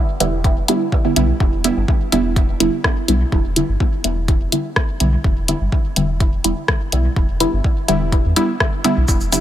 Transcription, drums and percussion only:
0.20 closed hi-hat medium
0.44 kick loud
0.44 closed hi-hat soft
0.68 closed hi-hat medium
0.92 kick loud
1.16 closed hi-hat medium
1.40 kick loud
1.64 closed hi-hat medium
1.88 kick loud
2.12 closed hi-hat medium
2.36 kick loud
2.36 closed hi-hat soft
2.60 closed hi-hat medium
2.84 kick loud
2.84 cross-stick medium
3.08 closed hi-hat medium
3.32 kick loud
3.56 closed hi-hat medium
3.80 kick loud
4.04 closed hi-hat medium
4.28 kick loud
4.28 closed hi-hat soft
4.52 closed hi-hat medium
4.76 kick loud
4.76 cross-stick medium
5.00 closed hi-hat medium
5.24 kick loud
5.48 closed hi-hat medium
5.72 kick loud
5.96 closed hi-hat medium
6.20 kick loud
6.20 closed hi-hat soft
6.44 closed hi-hat medium
6.68 kick loud
6.68 cross-stick medium
6.92 closed hi-hat medium
7.16 kick loud
7.40 closed hi-hat medium
7.64 kick loud
7.88 closed hi-hat medium
8.12 kick loud
8.12 closed hi-hat soft
8.36 closed hi-hat medium
8.60 kick loud
8.60 cross-stick medium
8.84 closed hi-hat medium
9.08 kick loud
9.08 shaker medium
9.20 shaker soft
9.32 closed hi-hat medium
9.32 shaker medium

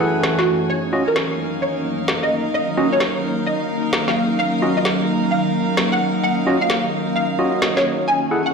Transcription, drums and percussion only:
0.23 snare loud
0.39 snare medium
1.16 snare loud
2.08 snare loud
3.00 snare loud
3.93 snare loud
4.08 snare medium
4.85 snare loud
5.77 snare loud
6.70 snare loud
7.62 snare loud
7.77 snare medium

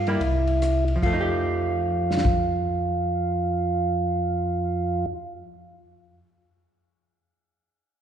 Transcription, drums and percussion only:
0.07 ride soft
0.21 kick soft
0.21 ride soft
0.47 ride soft
0.62 cross-stick medium
0.62 hi-hat pedal medium
0.62 ride medium
0.88 ride soft
1.03 kick soft
1.03 crash medium
2.11 snare medium
2.17 snare medium
2.25 kick medium

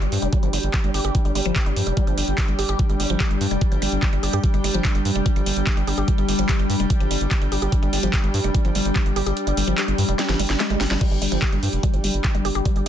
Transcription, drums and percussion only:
0.02 closed hi-hat soft
0.12 open hi-hat loud
0.22 closed hi-hat soft
0.33 kick loud
0.33 closed hi-hat medium
0.43 closed hi-hat soft
0.53 open hi-hat loud
0.63 closed hi-hat soft
0.74 kick loud
0.74 clap loud
0.74 closed hi-hat medium
0.84 closed hi-hat soft
0.94 open hi-hat loud
1.05 closed hi-hat soft
1.15 kick loud
1.15 closed hi-hat medium
1.25 closed hi-hat soft
1.35 open hi-hat loud
1.46 closed hi-hat soft
1.56 kick loud
1.56 clap loud
1.56 closed hi-hat medium
1.66 closed hi-hat soft
1.76 open hi-hat loud
1.87 closed hi-hat soft
1.97 kick loud
1.97 closed hi-hat medium
2.07 closed hi-hat soft
2.18 open hi-hat loud
2.28 closed hi-hat soft
2.38 kick loud
2.38 clap loud
2.38 closed hi-hat medium
2.48 closed hi-hat soft
2.59 open hi-hat loud
2.69 closed hi-hat soft
2.79 kick loud
2.79 closed hi-hat medium
2.90 closed hi-hat soft
3.00 open hi-hat loud
3.10 closed hi-hat soft
3.20 kick loud
3.20 clap loud
3.20 closed hi-hat medium
3.31 closed hi-hat soft
3.41 open hi-hat loud
3.51 closed hi-hat soft
3.61 kick loud
3.61 closed hi-hat medium
3.72 closed hi-hat soft
3.82 open hi-hat loud
3.92 closed hi-hat soft
4.03 kick loud
4.03 clap loud
4.03 closed hi-hat medium
4.13 closed hi-hat soft
4.23 open hi-hat loud
4.33 closed hi-hat soft
4.44 kick loud
4.44 closed hi-hat medium
4.54 closed hi-hat soft
4.64 open hi-hat loud
4.74 closed hi-hat soft
4.85 kick loud
4.85 clap loud
4.85 closed hi-hat medium
4.95 closed hi-hat soft
5.05 open hi-hat loud
5.16 closed hi-hat soft
5.26 kick loud
5.26 closed hi-hat medium
5.36 closed hi-hat soft
5.46 open hi-hat loud
5.57 closed hi-hat soft
5.67 kick loud
5.67 clap loud
5.67 closed hi-hat medium
5.77 closed hi-hat soft
5.87 open hi-hat loud
5.98 closed hi-hat soft
6.08 kick loud
6.08 closed hi-hat medium
6.18 closed hi-hat soft
6.29 open hi-hat loud
6.39 closed hi-hat soft
6.49 kick loud
6.49 clap loud
6.49 closed hi-hat loud
6.59 closed hi-hat soft
6.70 open hi-hat loud
6.80 closed hi-hat soft
6.90 kick loud
6.90 closed hi-hat medium
7.00 closed hi-hat soft
7.11 open hi-hat loud
7.21 closed hi-hat soft
7.31 kick loud
7.31 clap loud
7.31 closed hi-hat medium
7.42 closed hi-hat soft
7.52 open hi-hat loud
7.62 closed hi-hat soft
7.72 kick loud
7.72 closed hi-hat medium
7.83 closed hi-hat soft
7.93 open hi-hat loud
8.03 closed hi-hat soft
8.13 kick loud
8.13 clap loud
8.13 closed hi-hat loud
8.24 closed hi-hat soft
8.34 open hi-hat loud
8.44 closed hi-hat soft
8.55 kick loud
8.55 closed hi-hat loud
8.65 closed hi-hat soft
8.75 open hi-hat loud
8.85 closed hi-hat soft
8.96 kick loud
8.96 clap loud
8.96 closed hi-hat medium
9.06 closed hi-hat soft
9.16 open hi-hat medium
9.26 closed hi-hat soft
9.37 closed hi-hat loud
9.47 closed hi-hat soft
9.57 open hi-hat loud
9.78 clap loud
9.78 closed hi-hat loud
9.88 closed hi-hat soft
9.98 open hi-hat loud
10.09 closed hi-hat soft
10.19 snare medium
10.19 closed hi-hat medium
10.29 snare medium
10.29 closed hi-hat soft
10.39 open hi-hat loud
10.50 snare medium
10.50 closed hi-hat soft
10.60 snare medium
10.60 clap loud
10.60 closed hi-hat medium
10.70 closed hi-hat soft
10.81 snare medium
10.81 open hi-hat loud
10.91 snare medium
10.91 closed hi-hat soft
11.01 kick loud
11.01 closed hi-hat medium
11.01 crash medium
11.11 closed hi-hat soft
11.22 open hi-hat loud
11.32 closed hi-hat soft
11.42 kick loud
11.42 clap loud
11.42 closed hi-hat medium
11.52 closed hi-hat soft
11.63 open hi-hat loud
11.73 closed hi-hat soft
11.83 kick loud
11.83 closed hi-hat medium
11.94 closed hi-hat soft
12.04 open hi-hat loud
12.14 closed hi-hat soft
12.24 kick loud
12.24 clap loud
12.24 closed hi-hat medium
12.35 closed hi-hat soft
12.45 open hi-hat loud
12.55 closed hi-hat soft
12.65 kick loud
12.65 closed hi-hat medium
12.76 closed hi-hat soft

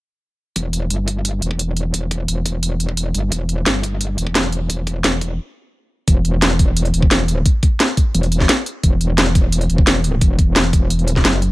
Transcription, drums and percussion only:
0.56 kick loud
0.56 closed hi-hat medium
0.73 closed hi-hat medium
0.90 closed hi-hat medium
1.08 kick loud
1.08 closed hi-hat medium
1.25 kick medium
1.25 closed hi-hat loud
1.42 closed hi-hat medium
1.51 kick loud
1.59 closed hi-hat medium
1.77 closed hi-hat medium
1.94 kick loud
1.94 closed hi-hat medium
2.11 kick loud
2.11 closed hi-hat medium
2.28 closed hi-hat medium
2.46 kick loud
2.46 closed hi-hat medium
2.63 closed hi-hat loud
2.80 closed hi-hat medium
2.89 kick medium
2.97 closed hi-hat medium
3.15 closed hi-hat medium
3.32 kick loud
3.32 closed hi-hat medium
3.49 closed hi-hat medium
3.66 snare loud
3.66 closed hi-hat medium
3.83 kick loud
3.83 closed hi-hat medium
4.01 kick medium
4.01 closed hi-hat medium
4.18 closed hi-hat medium
4.27 kick loud
4.35 snare loud
4.35 closed hi-hat medium
4.52 closed hi-hat medium
4.70 kick loud
4.70 closed hi-hat medium
4.87 kick loud
4.87 closed hi-hat medium
5.04 snare loud
5.04 closed hi-hat medium
5.21 kick loud
5.21 closed hi-hat medium
6.08 kick loud
6.08 closed hi-hat medium
6.25 closed hi-hat medium
6.42 snare loud
6.42 closed hi-hat loud
6.59 kick loud
6.59 closed hi-hat medium
6.77 closed hi-hat loud
6.85 closed hi-hat soft
6.94 closed hi-hat medium
7.02 kick loud
7.11 snare loud
7.11 closed hi-hat loud
7.28 closed hi-hat medium
7.46 kick loud
7.46 closed hi-hat medium
7.63 kick loud
7.63 closed hi-hat medium
7.80 snare loud
7.80 closed hi-hat loud
7.97 kick loud
7.97 closed hi-hat medium
8.15 closed hi-hat loud
8.23 closed hi-hat soft
8.32 closed hi-hat medium
8.40 kick medium
8.40 snare soft
8.49 snare loud
8.49 closed hi-hat loud
8.66 closed hi-hat medium
8.83 kick loud
8.83 closed hi-hat medium
9.01 closed hi-hat medium
9.18 snare loud
9.18 closed hi-hat loud
9.35 kick loud
9.35 closed hi-hat medium
9.52 closed hi-hat medium
9.61 closed hi-hat soft
9.70 closed hi-hat medium
9.78 kick loud
9.87 snare loud
9.87 closed hi-hat medium
10.04 closed hi-hat medium
10.21 kick loud
10.21 closed hi-hat medium
10.39 kick loud
10.39 closed hi-hat medium
10.56 snare loud
10.56 closed hi-hat medium
10.73 kick loud
10.73 closed hi-hat medium
10.90 closed hi-hat medium
10.99 closed hi-hat soft
11.08 closed hi-hat medium
11.16 kick medium
11.16 snare soft
11.25 snare loud
11.25 closed hi-hat medium
11.42 closed hi-hat medium

